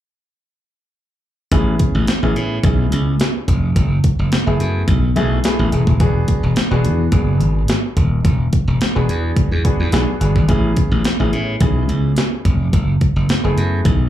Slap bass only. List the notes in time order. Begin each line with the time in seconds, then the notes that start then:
1.52 A1
1.95 A1
2.23 A1
2.36 A2
2.63 B1
2.92 C#2
3.48 F1
3.76 F#1
4.19 F#1
4.47 F#1
4.60 F#2
4.88 B1
5.16 B1
5.59 A1
5.72 E1
5.87 D#1
6.00 E1
6.43 E1
6.71 E1
6.85 E2
7.12 F#1
7.40 G#1
7.97 D#1
8.25 E1
8.68 E1
8.96 E1
9.09 E2
9.51 E2
9.80 E2
9.93 B1
10.21 G1
10.36 G#1
10.49 A1
10.91 A1
11.20 A1
11.33 A2
11.61 B1
11.89 C#2
12.45 F1
12.73 F#1
13.16 F#1
13.44 F#1
13.57 F#2
13.85 B1